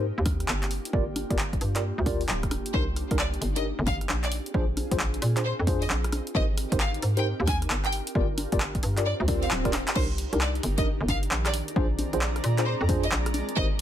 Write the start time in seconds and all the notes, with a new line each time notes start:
Already playing: G#2 A#3 C4 D#4 G4
0.18 D#2
0.26 kick, cross-stick, open hi-hat, high conga
0.40 cross-stick, closed hi-hat
0.48 G1, clap
0.63 clap, closed hi-hat
0.71 D4 F4, open hi-hat
0.85 closed hi-hat
0.93 G1 F4 G4 A#4 D5, kick
1.16 cross-stick, open hi-hat, high conga
1.30 G1 F4 G4 A#4 D5, kick, closed hi-hat
1.39 clap
1.53 kick, closed hi-hat
1.61 G2, open hi-hat
1.76 F4 G4 A#4 D5, clap, closed hi-hat
1.98 D2
2.06 F4 G4 A#4 D5, kick, open hi-hat, high conga
2.21 open hi-hat
2.29 D1, clap
2.43 kick, cross-stick, closed hi-hat
2.51 cross-stick, open hi-hat, high conga
2.66 closed hi-hat
2.74 C2 D4 D#4 G4 A#4 C5, kick
2.96 cross-stick, open hi-hat
3.11 C2 D4 D#4 G4 A#4, kick, closed hi-hat
3.19 D5, clap
3.34 closed hi-hat
3.41 G1, open hi-hat
3.56 D4 D#4 G4 A#4 D#5, closed hi-hat
3.79 G1
3.87 F5, kick, cross-stick, open hi-hat, high conga
4.01 cross-stick, closed hi-hat
4.09 A#1, clap
4.24 D5, clap, closed hi-hat
4.31 C4 F4 G#4, open hi-hat
4.46 closed hi-hat
4.54 A#1 D4 F4 G#4 C5, kick
4.77 cross-stick, open hi-hat, high conga
4.91 A#1 D4 F4 G#4 C5, kick, closed hi-hat
4.99 clap
5.14 closed hi-hat
5.22 A#2, open hi-hat
5.37 D4 F4 G#4 C5, clap, closed hi-hat
5.45 C5
5.59 F2
5.67 D4 F4 G#4 C5, kick, open hi-hat, high conga
5.82 D#5, open hi-hat
5.90 A#1, clap
6.04 cross-stick, closed hi-hat
6.12 cross-stick, open hi-hat, high conga
6.27 closed hi-hat
6.34 G#1 D#4 G4 A#4 C5 D#5, kick
6.58 cross-stick, open hi-hat
6.72 G#1 D#4 G4 A#4 C5, kick, closed hi-hat
6.80 F5, clap
6.94 closed hi-hat
7.02 G#2, open hi-hat
7.17 D#4 G4 A#4 C5 G5, closed hi-hat
7.40 D#2
7.47 G#5, kick, cross-stick, open hi-hat, high conga
7.62 cross-stick, closed hi-hat
7.70 G1, clap
7.85 G5, clap, closed hi-hat
7.93 D4 F4 G4, open hi-hat
8.07 closed hi-hat
8.15 G1 F4 G4 A#4 D5, kick
8.38 cross-stick, open hi-hat, high conga
8.52 G1 F4 G4 A#4 D5, kick, closed hi-hat
8.60 clap
8.75 kick, closed hi-hat
8.83 G2, open hi-hat
8.97 F4 G4 A#4 D5, clap, closed hi-hat
9.05 D5, swell
9.20 D2
9.28 F4 G4 A#4 D5, kick, open hi-hat, high conga
9.43 F5, open hi-hat
9.51 D1, clap
9.65 F4 G4 A#4 D5, kick, cross-stick, closed hi-hat
9.73 clap, open hi-hat, high conga
9.88 clap, closed hi-hat
9.95 C2 D#3 D4 D#4 G4 A#4 C5, kick, crash
10.18 open hi-hat
10.33 C2 D4 D#4 G4 A#4, closed hi-hat
10.41 D5, clap
10.55 A#5, closed hi-hat
10.63 G1, open hi-hat
10.68 D5
10.78 D4 D#4 G4 A#4 D#5, kick, closed hi-hat
11.01 G1
11.08 F5, kick, open hi-hat, high conga
11.23 closed hi-hat
11.31 A#1, clap
11.45 D5, cross-stick, clap, closed hi-hat
11.54 G#3 C4 F4 G#4, open hi-hat
11.68 closed hi-hat
11.76 A#1 D4 F4 G#4 C5, kick
11.99 open hi-hat, high conga
12.13 A#1 D4 F4 G#4 C5, closed hi-hat
12.21 clap
12.36 cross-stick, closed hi-hat
12.44 A#2, open hi-hat
12.58 D4 F4 G#4 C5, clap, closed hi-hat
12.66 C5
12.81 F2
12.89 D4 F4 G#4 C5, kick, open hi-hat, high conga
13.03 D#5, open hi-hat
13.11 A#1, clap
13.26 cross-stick, closed hi-hat
13.34 open hi-hat, high conga
13.49 closed hi-hat
13.56 G#1 A#3 D#4 G4 A#4 C5 D#5, kick